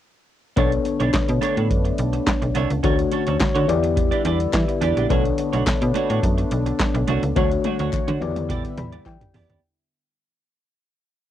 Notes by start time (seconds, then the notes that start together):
0.56 B1 D3 A3 B3 D4 A4 C#5, kick, closed hi-hat
0.72 muted clean electric guitar stroke, closed hi-hat
0.85 muted clean electric guitar stroke, closed hi-hat
1.00 B1 B3 D4 A4 C#5, closed hi-hat
1.13 B2, muted clean electric guitar stroke, kick, snare, clap, closed hi-hat
1.28 B2, muted clean electric guitar stroke, closed hi-hat
1.41 B3 D4 A4 C#5, clap, closed hi-hat
1.56 A2 B3 D4 A4 C#5, closed hi-hat
1.70 F#2, muted clean electric guitar stroke, kick, closed hi-hat
1.85 muted clean electric guitar stroke, closed hi-hat
1.98 B1, closed hi-hat
2.13 muted clean electric guitar stroke, closed hi-hat
2.27 kick, snare, clap, closed hi-hat
2.42 B1, muted clean electric guitar stroke, closed hi-hat
2.55 C2 B3 D4 A4 C#5, closed hi-hat
2.70 C#2, muted clean electric guitar stroke, closed hi-hat
2.83 D2 D3 A3 C#4 D4 F#4 A4 C#5, kick, closed hi-hat
2.98 muted clean electric guitar stroke, closed hi-hat
3.11 C#4 F#4 A4 C#5, closed hi-hat
3.26 D2 C#4 F#4 A4 C#5, closed hi-hat
3.39 muted clean electric guitar stroke, kick, snare, clap, closed hi-hat
3.55 D3 C#4 F#4 A4 C#5, closed hi-hat
3.68 E2 G3 B3 E4 G4 D5, muted clean electric guitar stroke, closed hi-hat
3.83 muted clean electric guitar stroke, closed hi-hat
3.96 muted clean electric guitar stroke, kick, closed hi-hat
4.11 D4 G4 B4 D5, closed hi-hat
4.25 E2 D4 G4 B4 D5, closed hi-hat
4.40 muted clean electric guitar stroke, closed hi-hat
4.53 E3, muted clean electric guitar stroke, kick, snare, clap, closed hi-hat
4.68 muted clean electric guitar stroke, closed hi-hat
4.81 E2 D4 G4 B4 D5, closed hi-hat
4.96 A#1 D4 G4 B4 D5, closed hi-hat
5.09 B1 D3 A3 B3 D4 F#4 A4 C#5, kick, closed hi-hat
5.25 muted clean electric guitar stroke, closed hi-hat
5.38 muted clean electric guitar stroke, closed hi-hat
5.53 B1 A3 D4 F#4 C#5, closed hi-hat
5.66 B2, muted clean electric guitar stroke, kick, snare, clap, closed hi-hat
5.81 B2, muted clean electric guitar stroke, closed hi-hat
5.94 A3 D4 F#4 C#5, clap, closed hi-hat
6.09 A2 A3 D4 F#4 C#5, closed hi-hat
6.23 F#2, muted clean electric guitar stroke, kick, closed hi-hat
6.38 muted clean electric guitar stroke, closed hi-hat
6.51 B1, closed hi-hat
6.66 muted clean electric guitar stroke, closed hi-hat
6.80 kick, snare, clap, closed hi-hat
6.95 B1, muted clean electric guitar stroke, closed hi-hat
7.08 C2 A3 D4 F#4 C#5, closed hi-hat
7.23 C#2, muted clean electric guitar stroke, closed hi-hat
7.36 D2 D3 A3 D4 F#4 C#5, kick, closed hi-hat, high tom
7.51 muted clean electric guitar stroke, closed hi-hat
7.64 A3 D4 F#4 C#5, closed hi-hat, high tom
7.79 D2 A3 D4 F#4 C#5, closed hi-hat
7.93 D3, muted clean electric guitar stroke, kick, clap, closed hi-hat
8.08 D3 A3 D4 F#4 C#5, closed hi-hat, mid tom
8.21 E2 D3 G3 B3 E4 G4 D5, muted clean electric guitar stroke, closed hi-hat, mid tom
8.36 muted clean electric guitar stroke, closed hi-hat, mid tom
8.49 B3 E4 G4 D5, kick, closed hi-hat, mid tom
8.64 muted clean electric guitar stroke, closed hi-hat
8.78 E2 B5, muted clean electric guitar stroke, closed hi-hat, mid tom
8.93 B3 E4 G4 D5, closed hi-hat
9.06 E3 G5, muted clean electric guitar stroke, kick, clap, closed hi-hat
9.21 muted clean electric guitar stroke, closed hi-hat, floor tom
9.34 E2 B3 E4 G4 D5, floor tom, open hi-hat
9.49 D#2 B3 E4 G4 D5, closed hi-hat, floor tom